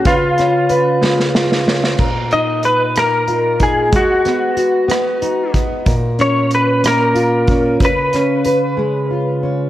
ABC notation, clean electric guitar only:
X:1
M:6/8
L:1/8
Q:3/8=62
K:A#phr
V:1 name="Clean electric guitar"
E4- E z | z d B A2 G | F4- F z | z c B A3 |
B4- B z |]